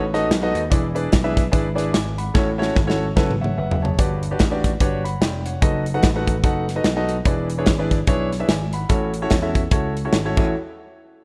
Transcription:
Already playing: slap bass A1
0.14 grand piano D#4 F#4 A4 B4 D#5, snare, closed hi-hat
0.30 slap bass B1, snare, closed hi-hat
0.42 grand piano D#4 F#4 A4 B4 D#5
0.54 slap bass D#2, closed hi-hat
0.70 slap bass E1, grand piano E3 D4 E4 G#4 B4 D5, kick, closed hi-hat
0.95 grand piano D4 E4 G#4 B4 D5, closed hi-hat
1.12 slap bass B1, kick, snare, closed hi-hat
1.24 grand piano D4 E4 G#4 B4 E5
1.37 kick, snare, closed hi-hat
1.52 slap bass G#1, grand piano D4 E4 G#4 B4 D5, kick, closed hi-hat
1.75 grand piano D4 E4 G#4 B4 D5, snare, closed hi-hat
1.93 slap bass G#1, grand piano G#5 D6, snare, closed hi-hat
2.18 grand piano F#5 B5, closed hi-hat
2.34 slap bass A1, grand piano A2 C#4 E4 F#4 A4 C#5, kick, snare
2.58 grand piano C#4 E4 F#4 A4 C#5, snare
2.75 slap bass G#1, kick, snare
2.87 grand piano C#4 E4 F#4 A4 C#5, snare
3.16 slap bass F#1, grand piano C#4 E4 F#4 A4 B4, kick, snare
3.31 mid tom
3.41 grand piano C#5 E5 F#5, mid tom
3.58 slap bass F#1, grand piano B4 E5 F#5
3.71 floor tom
3.82 grand piano G#4 C#5 A5, floor tom
3.99 slap bass G1, grand piano G2 D4 F#4 G4 B4 D5, kick, closed hi-hat
4.23 closed hi-hat
4.31 grand piano D4 F#4 G4 B4 D5
4.39 slap bass A1, kick, snare, closed hi-hat
4.51 grand piano D4 F#4 G4 B4 D5
4.64 kick, snare, closed hi-hat
4.80 slap bass G1, grand piano D4 F#4 G4 B4 C#5, kick, closed hi-hat
5.04 grand piano F#5 B5, closed hi-hat
5.21 slap bass F1, grand piano D5 G5, snare, closed hi-hat
5.45 grand piano C#5 F#5, closed hi-hat
5.62 slap bass F#1, grand piano D#4 F#4 A4 B4 D#5, kick, closed hi-hat
5.86 closed hi-hat
5.94 grand piano D#4 F#4 A4 B4 F#5
6.03 slap bass A1, kick, snare, closed hi-hat
6.15 grand piano D#4 F#4 A4 B4 F#5
6.28 kick, closed hi-hat
6.43 slap bass F#1, grand piano D#4 F#4 A4 B4 F#5, kick, closed hi-hat
6.69 snare, closed hi-hat
6.76 grand piano D#4 F#4 A4 B4 D#5
6.84 slap bass B1, snare, closed hi-hat
6.96 grand piano D#4 F#4 A4 B4 D#5
7.09 closed hi-hat
7.25 slap bass E1, grand piano E3 D4 E4 G#4 B4 D5, kick, closed hi-hat
7.50 closed hi-hat
7.58 grand piano D4 E4 G#4 B4 C#5
7.66 slap bass G#1, kick, snare, closed hi-hat
7.79 grand piano D4 E4 G#4 B4 D5
7.91 kick, snare, closed hi-hat
8.07 slap bass B1, grand piano D4 E4 G#4 B4 C#5, kick, closed hi-hat
8.32 snare, closed hi-hat
8.39 grand piano D4 E4 G#4 B4 E5
8.48 slap bass G#1, grand piano D5 G#5, snare, closed hi-hat
8.73 grand piano F#5 B5, closed hi-hat
8.89 slap bass A1, grand piano A2 C#4 E4 F#4 A4 C#5, kick, closed hi-hat
9.14 closed hi-hat
9.22 grand piano C#4 E4 F#4 A4 C#5
9.30 slap bass E2, kick, snare, closed hi-hat
9.42 grand piano C#4 E4 F#4 A4 E5
9.55 kick, closed hi-hat
9.71 slap bass C#2, grand piano C#4 E4 F#4 A4 C#5, kick, closed hi-hat
9.97 closed hi-hat
10.05 grand piano C#4 E4 F#4 A4 C#5
10.13 slap bass G#1, snare, closed hi-hat
10.25 grand piano C#4 E4 F#4 A4 C#5
10.37 slap bass A1, grand piano A1 E4 F#4 A4 C#5, kick, crash

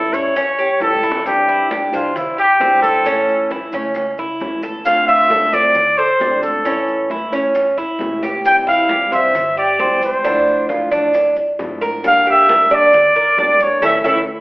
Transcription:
Already playing: nylon-string guitar E3 G3 C#4 E4, cuban tres E4, trumpet A4
0.13 upright bass E2, nylon-string guitar G3 C#4 E4, trumpet C#5, maracas
0.36 cuban tres C#4, muted nylon-string guitar stroke, high bongo, high conga, maracas
0.59 cuban tres G4, high bongo, high conga, maracas
0.80 upright bass C2, nylon-string guitar E3 G3 C#4 E4, trumpet A4, high bongo, high conga, maracas
1.03 cuban tres E4, maracas
1.12 low bongo
1.25 nylon-string guitar C3 E3 G3 D4 E4, trumpet G4, high bongo, high conga, maracas
1.48 cuban tres E4, high bongo, high conga, maracas
1.70 nylon-string guitar E3 G3 D4 E4, cuban tres G4, high bongo, high conga, maracas
1.92 upright bass C2, nylon-string guitar E3 G3 D4 E4, trumpet F4, cuban tres C5, high conga, maracas
2.14 trumpet E4, muted nylon-string guitar stroke, high bongo, high conga, low conga, maracas
2.38 cuban tres G4, trumpet G4, high bongo, high conga, maracas
2.60 upright bass A1, nylon-string guitar E3 G3 D4 E4, cuban tres C4, high bongo, low bongo, high conga, maracas
2.82 trumpet A4, high bongo, high conga, maracas
3.05 nylon-string guitar E3 A3 C#4 E4, cuban tres C#4, high bongo, high conga, maracas
3.28 high bongo, high conga, maracas
3.50 nylon-string guitar E3 A3 C#4 E4, cuban tres E4, high bongo, high conga, maracas
3.72 upright bass C#2, nylon-string guitar A3 C#4 E4, cuban tres C#4, high conga, maracas
3.94 muted nylon-string guitar stroke, high bongo, high conga, maracas
4.18 upright bass C#2, cuban tres E4, high bongo, high conga, maracas
4.40 upright bass D2, nylon-string guitar E3 A3 C#4 E4, high bongo, low bongo, high conga, maracas
4.63 cuban tres A4, high bongo, maracas
4.85 nylon-string guitar D3 A3 C4 F4, trumpet F5, high bongo, high conga, maracas
5.07 cuban tres F4, trumpet E5, high bongo, high conga, maracas
5.30 nylon-string guitar D3 A3 C4 F4, cuban tres A4, high bongo, high conga, maracas
5.53 upright bass A1, nylon-string guitar A3 C4 F4, trumpet D5, cuban tres D5, high conga, maracas
5.74 muted nylon-string guitar stroke, high bongo, high conga, low conga, maracas
5.98 cuban tres A4, trumpet C5, high bongo, high conga, maracas
6.20 upright bass A1, nylon-string guitar D3 A3 C4 F4, cuban tres D4, high bongo, low bongo, high conga, maracas
6.43 trumpet A4, high bongo, high conga, maracas
6.64 nylon-string guitar E3 A3 C#4 E4, cuban tres C#4, high bongo, maracas
6.88 high bongo, high conga, maracas
7.10 nylon-string guitar E3 A3 C#4 E4, cuban tres E4, high bongo, high conga, maracas
7.32 upright bass E2, nylon-string guitar A3 C#4 E4, cuban tres C#4, high conga, maracas
7.55 muted nylon-string guitar stroke, high bongo, high conga, maracas
7.77 upright bass D2, cuban tres E4, high bongo, high conga, maracas
7.99 upright bass C2, nylon-string guitar E3 A3 C#4 E4, high bongo, low bongo, high conga, maracas
8.23 cuban tres G4, high bongo, maracas
8.45 nylon-string guitar C3 E3 G3 C4 E4, trumpet G5, high bongo, high conga, maracas
8.67 cuban tres E4, trumpet F5, high bongo, high conga, maracas
8.89 nylon-string guitar E3 G3 C4 E4, cuban tres G4, high bongo, high conga, maracas
9.12 upright bass G2, nylon-string guitar E3 G3 C4 E4, cuban tres C5, trumpet E5, high conga, maracas
9.34 muted nylon-string guitar stroke, high bongo, high conga, low conga, maracas
9.57 cuban tres G4, trumpet D5, high bongo, maracas
9.79 upright bass D2, nylon-string guitar E3 G3 C4 E4, cuban tres C4, high bongo, low bongo, high conga, maracas
10.01 trumpet C5, high bongo, high conga, maracas
10.24 nylon-string guitar D3 F3 A3 D4 E4, cuban tres D4, high bongo, maracas
10.47 high bongo, high conga, maracas
10.69 nylon-string guitar F3 A3 D4 E4, cuban tres F4, high bongo, high conga, maracas
10.91 upright bass A1, nylon-string guitar F3 A3 D4 E4, cuban tres D4, maracas
11.14 muted nylon-string guitar stroke, high bongo, high conga, maracas
11.36 upright bass A1, high bongo, high conga, maracas
11.59 upright bass G1, nylon-string guitar F3 A3 D4 E4, high bongo, low bongo, high conga, maracas
11.81 cuban tres A#4, high bongo, high conga, maracas
12.03 nylon-string guitar D3 G3 A#3 D4 G4, trumpet F5, high bongo, maracas
12.26 cuban tres G4, trumpet E5, high bongo, high conga, maracas
12.48 nylon-string guitar G3 A#3 D4 G4, cuban tres A#4, high bongo, high conga, maracas
12.71 upright bass D2, nylon-string guitar G3 A#3 D4 G4, cuban tres D5, trumpet D5, high conga, maracas
12.93 muted nylon-string guitar stroke, high bongo, high conga, low conga, maracas
13.15 cuban tres A#4, high bongo, high conga, maracas
13.37 upright bass A1, nylon-string guitar G3 A#3 D4 G4, cuban tres D4, high bongo, low bongo, high conga, maracas
13.60 trumpet C#5, high bongo, high conga, maracas
13.82 upright bass A1, nylon-string guitar E3 A3 C#4, cuban tres C#4 E4 A4, trumpet E5, high bongo, low conga, maracas
14.04 upright bass A1, nylon-string guitar E3 A3 C#4, cuban tres C#4 E4 A4, trumpet E5, high bongo, low conga, maracas

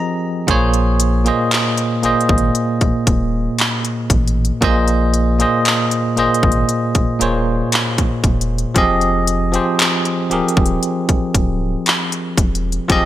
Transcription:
Already playing: tine electric piano F3 C4 G4 G#4 A#4 D#5 A#5
0.47 sub bass A#1, tine electric piano A#2 A#3 G#4 C5 C#5, kick, closed hi-hat
0.74 closed hi-hat
1.00 closed hi-hat
1.25 tine electric piano A#2 A#3 G#4 C5 D#5, closed hi-hat
1.51 clap, closed hi-hat
1.77 closed hi-hat
2.02 sub bass G#1, tine electric piano A#2 A#3 G#4 C5 D#5, closed hi-hat
2.21 closed hi-hat
2.29 sub bass G#1, kick
2.38 closed hi-hat
2.55 closed hi-hat
2.81 sub bass D#1, kick, closed hi-hat
3.07 sub bass D#1, kick, closed hi-hat
3.58 clap, closed hi-hat
3.85 closed hi-hat
4.10 sub bass A1, kick, closed hi-hat
4.28 closed hi-hat
4.45 closed hi-hat
4.61 sub bass A#1, tine electric piano A#2 A#3 G#4 C5 D#5, kick, closed hi-hat
4.88 closed hi-hat
5.14 closed hi-hat
5.39 tine electric piano A#2 A#3 G#4 C5 D#5, closed hi-hat
5.65 clap, closed hi-hat
5.91 closed hi-hat
6.16 sub bass G#1, tine electric piano A#2 A#3 G#4 C5 D#5, closed hi-hat
6.34 closed hi-hat
6.43 sub bass G#1, kick
6.52 closed hi-hat
6.69 closed hi-hat
6.95 sub bass D#1, kick, closed hi-hat
7.19 sub bass D#1, tine electric piano A#2 A#3 G#4 C5 C#5, closed hi-hat
7.72 clap, closed hi-hat
7.98 kick, closed hi-hat
8.24 sub bass E1, kick, closed hi-hat
8.41 closed hi-hat
8.58 closed hi-hat
8.74 sub bass F1, tine electric piano F3 C4 G4 G#4 D#5, kick, closed hi-hat
9.01 closed hi-hat
9.27 closed hi-hat
9.52 tine electric piano F3 C4 G4 G#4 C5, closed hi-hat
9.79 clap, closed hi-hat
10.05 closed hi-hat
10.30 sub bass D#1, tine electric piano F3 C4 G4 G#4 A#4, closed hi-hat
10.48 closed hi-hat
10.57 sub bass D#1, kick
10.66 closed hi-hat
10.83 closed hi-hat
11.09 sub bass D1, kick, closed hi-hat
11.35 sub bass D1, kick, closed hi-hat
11.86 clap, closed hi-hat
12.12 closed hi-hat
12.38 sub bass E1, kick, closed hi-hat
12.55 closed hi-hat
12.72 closed hi-hat
12.88 sub bass F1, tine electric piano F3 C4 G4 G#4 D#5, kick, closed hi-hat

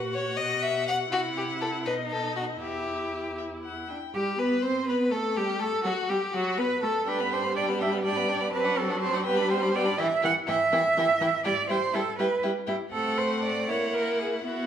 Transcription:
Already playing: cello A#2, viola F#4, violin F#5
0.14 violin C#5
0.37 cello B2, violin D#5
0.63 violin E5
0.88 violin F#5
1.11 cello C3, viola E4, violin F#4
1.37 violin G4
1.62 violin A4
1.85 cello B2, viola D#4, violin B4 D#5
2.11 violin A4
2.36 violin F#4
2.62 cello E2, viola E4, violin G4 E5
3.38 violin E5
3.63 violin F#5
3.89 cello D4, violin G5
4.14 viola G3, violin G4, cello G4
4.38 viola B3, cello B4, violin B4
4.62 viola C4, violin C5, cello C5
4.87 viola B3, violin B4, cello B4
5.12 viola A3, violin A4, cello A4
5.37 viola G3, violin G4, cello G4
5.60 viola A3, violin A4, cello A4
5.84 viola F#3, violin F#4, cello F#4
6.09 viola G3, violin G4, cello G4
6.34 viola F#3, violin F#4, cello F#4
6.58 viola B3, violin B4, cello B4
6.81 viola A3, violin A4, cello A4
7.06 viola G3, violin D4 G5, cello B4
7.18 violin B3 B5
7.30 violin D4 G5, cello C5
7.42 violin B3 B5
7.54 violin D4 G5, cello D5
7.67 violin B3 B5
7.79 violin D4 G5, cello E5
7.91 violin B3 B5
8.03 violin D4 G5, cello D5
8.16 violin B3 B5
8.28 violin D4 G5
8.39 violin B3 B5
8.52 viola F#3, violin C4 A5, cello B4
8.64 violin D4 F#5
8.76 violin C4 A5, cello A4
8.88 violin D4 F#5
9.00 violin C4 A5, cello C5
9.13 violin D4 F#5
9.24 viola G3, violin B3 G5, cello B4
9.36 violin D4 B5
9.48 violin B3 G5, cello C5
9.61 violin D4 B5
9.72 violin B3 G5, cello D5
9.85 violin D4 B5
9.97 viola E3, violin E4 G5, cello E5
10.22 viola E3, violin E4 G5, cello F#5
10.47 viola E3, violin E4 G5, cello E5
10.72 viola E3, violin E4 G5
10.97 viola E3, violin E4 G5
11.21 viola E3, violin E4 G5
11.44 viola G3, violin E4 G5, cello D5
11.69 viola G3, violin E4 G5, cello C5
11.94 viola G3, violin E4 G5, cello A4
12.18 viola G3, violin E4 G5, cello B4
12.43 viola G3, violin E4 G5
12.67 viola G3, violin E4 G5, cello E4
12.91 viola A3, violin C4 F#5, cello A4
13.18 cello C5
13.43 cello D5
13.67 viola A#3, violin E4 F#5, cello C#5
13.94 cello A#4
14.20 cello G#4
14.45 viola B3, violin E4 F#5, cello F#4

